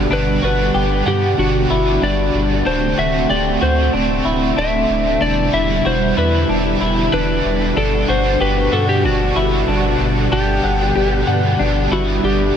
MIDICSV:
0, 0, Header, 1, 6, 480
1, 0, Start_track
1, 0, Key_signature, 1, "major"
1, 0, Tempo, 638298
1, 79, Time_signature, 4, 2, 24, 8
1, 9452, End_track
2, 0, Start_track
2, 0, Title_t, "Electric slide guitar"
2, 0, Program_c, 0, 29
2, 99, Note_on_c, 0, 71, 84
2, 326, Note_off_c, 0, 71, 0
2, 335, Note_on_c, 0, 71, 77
2, 777, Note_off_c, 0, 71, 0
2, 810, Note_on_c, 0, 67, 80
2, 1028, Note_off_c, 0, 67, 0
2, 1047, Note_on_c, 0, 66, 80
2, 1530, Note_on_c, 0, 74, 89
2, 1537, Note_off_c, 0, 66, 0
2, 2004, Note_on_c, 0, 72, 91
2, 2019, Note_off_c, 0, 74, 0
2, 2246, Note_on_c, 0, 76, 87
2, 2249, Note_off_c, 0, 72, 0
2, 2484, Note_on_c, 0, 74, 86
2, 2490, Note_off_c, 0, 76, 0
2, 2723, Note_off_c, 0, 74, 0
2, 2726, Note_on_c, 0, 72, 78
2, 2946, Note_off_c, 0, 72, 0
2, 3448, Note_on_c, 0, 76, 97
2, 3925, Note_on_c, 0, 74, 93
2, 3938, Note_off_c, 0, 76, 0
2, 4164, Note_on_c, 0, 76, 89
2, 4169, Note_off_c, 0, 74, 0
2, 4409, Note_off_c, 0, 76, 0
2, 4409, Note_on_c, 0, 72, 80
2, 4648, Note_off_c, 0, 72, 0
2, 4651, Note_on_c, 0, 71, 69
2, 4869, Note_off_c, 0, 71, 0
2, 5366, Note_on_c, 0, 71, 93
2, 5844, Note_off_c, 0, 71, 0
2, 5847, Note_on_c, 0, 69, 100
2, 6086, Note_on_c, 0, 72, 92
2, 6090, Note_off_c, 0, 69, 0
2, 6324, Note_off_c, 0, 72, 0
2, 6327, Note_on_c, 0, 71, 96
2, 6565, Note_on_c, 0, 69, 88
2, 6570, Note_off_c, 0, 71, 0
2, 6681, Note_off_c, 0, 69, 0
2, 6684, Note_on_c, 0, 67, 83
2, 6805, Note_off_c, 0, 67, 0
2, 6810, Note_on_c, 0, 66, 90
2, 7762, Note_off_c, 0, 66, 0
2, 7765, Note_on_c, 0, 67, 74
2, 8971, Note_on_c, 0, 66, 68
2, 9172, Note_off_c, 0, 67, 0
2, 9207, Note_off_c, 0, 66, 0
2, 9210, Note_on_c, 0, 67, 73
2, 9452, Note_off_c, 0, 67, 0
2, 9452, End_track
3, 0, Start_track
3, 0, Title_t, "Clean electric guitar"
3, 0, Program_c, 1, 27
3, 80, Note_on_c, 1, 62, 82
3, 319, Note_on_c, 1, 66, 70
3, 320, Note_off_c, 1, 62, 0
3, 557, Note_off_c, 1, 66, 0
3, 560, Note_on_c, 1, 67, 74
3, 796, Note_off_c, 1, 67, 0
3, 799, Note_on_c, 1, 78, 70
3, 1036, Note_on_c, 1, 62, 71
3, 1039, Note_off_c, 1, 78, 0
3, 1278, Note_off_c, 1, 62, 0
3, 1280, Note_on_c, 1, 64, 75
3, 1519, Note_off_c, 1, 64, 0
3, 1519, Note_on_c, 1, 62, 73
3, 1989, Note_off_c, 1, 62, 0
3, 1998, Note_on_c, 1, 62, 79
3, 2238, Note_on_c, 1, 66, 67
3, 2239, Note_off_c, 1, 62, 0
3, 2474, Note_off_c, 1, 66, 0
3, 2477, Note_on_c, 1, 67, 70
3, 2713, Note_off_c, 1, 67, 0
3, 2716, Note_on_c, 1, 66, 69
3, 2957, Note_off_c, 1, 66, 0
3, 2957, Note_on_c, 1, 62, 77
3, 3197, Note_on_c, 1, 64, 72
3, 3198, Note_off_c, 1, 62, 0
3, 3436, Note_on_c, 1, 62, 73
3, 3438, Note_off_c, 1, 64, 0
3, 3907, Note_off_c, 1, 62, 0
3, 3916, Note_on_c, 1, 62, 83
3, 4158, Note_off_c, 1, 62, 0
3, 4159, Note_on_c, 1, 64, 69
3, 4397, Note_off_c, 1, 64, 0
3, 4400, Note_on_c, 1, 66, 74
3, 4638, Note_off_c, 1, 66, 0
3, 4641, Note_on_c, 1, 64, 70
3, 4880, Note_off_c, 1, 64, 0
3, 4880, Note_on_c, 1, 62, 78
3, 5120, Note_off_c, 1, 62, 0
3, 5122, Note_on_c, 1, 64, 70
3, 5361, Note_off_c, 1, 64, 0
3, 5361, Note_on_c, 1, 62, 73
3, 5831, Note_off_c, 1, 62, 0
3, 5840, Note_on_c, 1, 62, 87
3, 6079, Note_on_c, 1, 66, 75
3, 6080, Note_off_c, 1, 62, 0
3, 6316, Note_off_c, 1, 66, 0
3, 6319, Note_on_c, 1, 67, 71
3, 6557, Note_off_c, 1, 67, 0
3, 6560, Note_on_c, 1, 66, 72
3, 6799, Note_off_c, 1, 66, 0
3, 6800, Note_on_c, 1, 62, 76
3, 7038, Note_on_c, 1, 64, 74
3, 7039, Note_off_c, 1, 62, 0
3, 7279, Note_off_c, 1, 64, 0
3, 7280, Note_on_c, 1, 62, 76
3, 7750, Note_off_c, 1, 62, 0
3, 7759, Note_on_c, 1, 62, 83
3, 7999, Note_off_c, 1, 62, 0
3, 7999, Note_on_c, 1, 78, 69
3, 8238, Note_on_c, 1, 67, 70
3, 8239, Note_off_c, 1, 78, 0
3, 8477, Note_on_c, 1, 78, 71
3, 8479, Note_off_c, 1, 67, 0
3, 8718, Note_off_c, 1, 78, 0
3, 8719, Note_on_c, 1, 62, 75
3, 8959, Note_off_c, 1, 62, 0
3, 8960, Note_on_c, 1, 64, 72
3, 9200, Note_off_c, 1, 64, 0
3, 9201, Note_on_c, 1, 62, 72
3, 9452, Note_off_c, 1, 62, 0
3, 9452, End_track
4, 0, Start_track
4, 0, Title_t, "Overdriven electric guitar"
4, 0, Program_c, 2, 29
4, 0, Note_on_c, 2, 62, 62
4, 73, Note_on_c, 2, 55, 73
4, 81, Note_on_c, 2, 59, 70
4, 87, Note_off_c, 2, 62, 0
4, 90, Note_on_c, 2, 62, 77
4, 95, Note_on_c, 2, 66, 74
4, 316, Note_off_c, 2, 55, 0
4, 318, Note_off_c, 2, 62, 0
4, 320, Note_off_c, 2, 59, 0
4, 327, Note_off_c, 2, 66, 0
4, 327, Note_on_c, 2, 62, 45
4, 341, Note_on_c, 2, 59, 41
4, 1014, Note_on_c, 2, 55, 61
4, 1033, Note_off_c, 2, 59, 0
4, 1042, Note_on_c, 2, 59, 56
4, 1059, Note_off_c, 2, 62, 0
4, 1062, Note_on_c, 2, 62, 65
4, 1083, Note_on_c, 2, 66, 64
4, 1987, Note_off_c, 2, 55, 0
4, 1993, Note_on_c, 2, 50, 71
4, 1998, Note_off_c, 2, 59, 0
4, 2001, Note_on_c, 2, 57, 75
4, 2005, Note_off_c, 2, 62, 0
4, 2008, Note_on_c, 2, 60, 74
4, 2013, Note_off_c, 2, 66, 0
4, 2016, Note_on_c, 2, 66, 80
4, 2222, Note_off_c, 2, 66, 0
4, 2231, Note_on_c, 2, 66, 54
4, 2236, Note_off_c, 2, 50, 0
4, 2239, Note_off_c, 2, 60, 0
4, 2240, Note_off_c, 2, 57, 0
4, 2248, Note_on_c, 2, 60, 45
4, 2262, Note_on_c, 2, 57, 41
4, 2941, Note_on_c, 2, 50, 61
4, 2955, Note_off_c, 2, 66, 0
4, 2960, Note_off_c, 2, 57, 0
4, 2964, Note_off_c, 2, 60, 0
4, 2969, Note_on_c, 2, 57, 63
4, 2990, Note_on_c, 2, 60, 62
4, 3010, Note_on_c, 2, 66, 68
4, 3915, Note_on_c, 2, 40, 73
4, 3922, Note_off_c, 2, 50, 0
4, 3922, Note_on_c, 2, 47, 66
4, 3924, Note_off_c, 2, 57, 0
4, 3925, Note_on_c, 2, 52, 71
4, 3930, Note_on_c, 2, 55, 81
4, 3931, Note_off_c, 2, 60, 0
4, 3934, Note_on_c, 2, 62, 80
4, 3936, Note_off_c, 2, 66, 0
4, 3939, Note_on_c, 2, 64, 80
4, 4141, Note_off_c, 2, 64, 0
4, 4150, Note_on_c, 2, 64, 53
4, 4155, Note_off_c, 2, 62, 0
4, 4157, Note_off_c, 2, 40, 0
4, 4160, Note_off_c, 2, 47, 0
4, 4162, Note_off_c, 2, 52, 0
4, 4164, Note_off_c, 2, 55, 0
4, 4164, Note_on_c, 2, 62, 53
4, 4173, Note_on_c, 2, 55, 45
4, 4181, Note_on_c, 2, 52, 45
4, 4849, Note_off_c, 2, 52, 0
4, 4858, Note_on_c, 2, 52, 59
4, 4875, Note_off_c, 2, 64, 0
4, 4881, Note_off_c, 2, 55, 0
4, 4884, Note_on_c, 2, 55, 62
4, 4903, Note_off_c, 2, 62, 0
4, 4906, Note_on_c, 2, 62, 65
4, 4928, Note_on_c, 2, 64, 69
4, 5828, Note_off_c, 2, 52, 0
4, 5831, Note_off_c, 2, 55, 0
4, 5831, Note_on_c, 2, 55, 67
4, 5840, Note_on_c, 2, 59, 79
4, 5845, Note_off_c, 2, 62, 0
4, 5848, Note_on_c, 2, 62, 77
4, 5850, Note_off_c, 2, 64, 0
4, 5853, Note_on_c, 2, 66, 76
4, 6059, Note_off_c, 2, 66, 0
4, 6068, Note_on_c, 2, 66, 51
4, 6075, Note_off_c, 2, 55, 0
4, 6076, Note_off_c, 2, 62, 0
4, 6079, Note_off_c, 2, 59, 0
4, 6085, Note_on_c, 2, 62, 44
4, 6775, Note_on_c, 2, 55, 56
4, 6797, Note_off_c, 2, 66, 0
4, 6804, Note_on_c, 2, 59, 60
4, 6820, Note_off_c, 2, 62, 0
4, 6823, Note_on_c, 2, 62, 64
4, 6845, Note_on_c, 2, 66, 61
4, 7744, Note_off_c, 2, 55, 0
4, 7752, Note_off_c, 2, 59, 0
4, 7753, Note_on_c, 2, 55, 76
4, 7761, Note_on_c, 2, 59, 72
4, 7763, Note_off_c, 2, 62, 0
4, 7766, Note_on_c, 2, 62, 82
4, 7996, Note_off_c, 2, 55, 0
4, 8000, Note_off_c, 2, 59, 0
4, 8001, Note_off_c, 2, 62, 0
4, 8010, Note_on_c, 2, 62, 46
4, 8024, Note_on_c, 2, 59, 44
4, 8700, Note_on_c, 2, 55, 64
4, 8719, Note_off_c, 2, 59, 0
4, 8723, Note_off_c, 2, 66, 0
4, 8728, Note_on_c, 2, 59, 65
4, 8747, Note_off_c, 2, 62, 0
4, 8750, Note_on_c, 2, 62, 68
4, 9452, Note_off_c, 2, 55, 0
4, 9452, Note_off_c, 2, 59, 0
4, 9452, Note_off_c, 2, 62, 0
4, 9452, End_track
5, 0, Start_track
5, 0, Title_t, "String machine"
5, 0, Program_c, 3, 50
5, 0, Note_on_c, 3, 47, 66
5, 0, Note_on_c, 3, 50, 70
5, 0, Note_on_c, 3, 55, 64
5, 0, Note_on_c, 3, 78, 77
5, 1969, Note_off_c, 3, 47, 0
5, 1970, Note_off_c, 3, 55, 0
5, 1997, Note_on_c, 3, 57, 63
5, 1997, Note_on_c, 3, 60, 63
5, 3892, Note_off_c, 3, 78, 0
5, 3899, Note_off_c, 3, 57, 0
5, 3899, Note_off_c, 3, 60, 0
5, 3916, Note_on_c, 3, 62, 79
5, 3916, Note_on_c, 3, 64, 67
5, 3917, Note_on_c, 3, 47, 63
5, 3918, Note_on_c, 3, 55, 66
5, 5812, Note_off_c, 3, 50, 0
5, 5818, Note_off_c, 3, 64, 0
5, 5819, Note_off_c, 3, 55, 0
5, 5838, Note_on_c, 3, 50, 71
5, 5839, Note_on_c, 3, 55, 69
5, 5839, Note_on_c, 3, 78, 64
5, 9452, Note_off_c, 3, 47, 0
5, 9452, Note_off_c, 3, 50, 0
5, 9452, Note_off_c, 3, 55, 0
5, 9452, Note_off_c, 3, 62, 0
5, 9452, Note_off_c, 3, 78, 0
5, 9452, End_track
6, 0, Start_track
6, 0, Title_t, "Sub bass"
6, 0, Program_c, 4, 38
6, 78, Note_on_c, 4, 31, 102
6, 290, Note_off_c, 4, 31, 0
6, 317, Note_on_c, 4, 31, 88
6, 529, Note_off_c, 4, 31, 0
6, 558, Note_on_c, 4, 31, 94
6, 770, Note_off_c, 4, 31, 0
6, 797, Note_on_c, 4, 43, 88
6, 1009, Note_off_c, 4, 43, 0
6, 1037, Note_on_c, 4, 31, 95
6, 1249, Note_off_c, 4, 31, 0
6, 1278, Note_on_c, 4, 31, 95
6, 1490, Note_off_c, 4, 31, 0
6, 1518, Note_on_c, 4, 31, 92
6, 1729, Note_off_c, 4, 31, 0
6, 1758, Note_on_c, 4, 31, 94
6, 1970, Note_off_c, 4, 31, 0
6, 1999, Note_on_c, 4, 26, 95
6, 2210, Note_off_c, 4, 26, 0
6, 2239, Note_on_c, 4, 26, 87
6, 2450, Note_off_c, 4, 26, 0
6, 2477, Note_on_c, 4, 26, 92
6, 2689, Note_off_c, 4, 26, 0
6, 2717, Note_on_c, 4, 38, 91
6, 2929, Note_off_c, 4, 38, 0
6, 2958, Note_on_c, 4, 26, 100
6, 3170, Note_off_c, 4, 26, 0
6, 3197, Note_on_c, 4, 26, 98
6, 3409, Note_off_c, 4, 26, 0
6, 3438, Note_on_c, 4, 26, 94
6, 3650, Note_off_c, 4, 26, 0
6, 3679, Note_on_c, 4, 26, 87
6, 3890, Note_off_c, 4, 26, 0
6, 3918, Note_on_c, 4, 28, 108
6, 4130, Note_off_c, 4, 28, 0
6, 4158, Note_on_c, 4, 28, 98
6, 4370, Note_off_c, 4, 28, 0
6, 4399, Note_on_c, 4, 28, 102
6, 4610, Note_off_c, 4, 28, 0
6, 4638, Note_on_c, 4, 40, 95
6, 4850, Note_off_c, 4, 40, 0
6, 4878, Note_on_c, 4, 28, 95
6, 5090, Note_off_c, 4, 28, 0
6, 5119, Note_on_c, 4, 28, 93
6, 5330, Note_off_c, 4, 28, 0
6, 5360, Note_on_c, 4, 28, 94
6, 5571, Note_off_c, 4, 28, 0
6, 5599, Note_on_c, 4, 28, 94
6, 5810, Note_off_c, 4, 28, 0
6, 5837, Note_on_c, 4, 31, 101
6, 6049, Note_off_c, 4, 31, 0
6, 6078, Note_on_c, 4, 31, 99
6, 6290, Note_off_c, 4, 31, 0
6, 6319, Note_on_c, 4, 31, 104
6, 6530, Note_off_c, 4, 31, 0
6, 6556, Note_on_c, 4, 43, 94
6, 6796, Note_on_c, 4, 31, 101
6, 6807, Note_off_c, 4, 43, 0
6, 7009, Note_off_c, 4, 31, 0
6, 7036, Note_on_c, 4, 31, 95
6, 7248, Note_off_c, 4, 31, 0
6, 7275, Note_on_c, 4, 31, 90
6, 7488, Note_off_c, 4, 31, 0
6, 7516, Note_on_c, 4, 31, 96
6, 7729, Note_off_c, 4, 31, 0
6, 7757, Note_on_c, 4, 31, 113
6, 7969, Note_off_c, 4, 31, 0
6, 7998, Note_on_c, 4, 31, 91
6, 8210, Note_off_c, 4, 31, 0
6, 8238, Note_on_c, 4, 31, 91
6, 8450, Note_off_c, 4, 31, 0
6, 8475, Note_on_c, 4, 43, 90
6, 8688, Note_off_c, 4, 43, 0
6, 8718, Note_on_c, 4, 31, 100
6, 8930, Note_off_c, 4, 31, 0
6, 8955, Note_on_c, 4, 31, 89
6, 9168, Note_off_c, 4, 31, 0
6, 9198, Note_on_c, 4, 31, 99
6, 9410, Note_off_c, 4, 31, 0
6, 9452, End_track
0, 0, End_of_file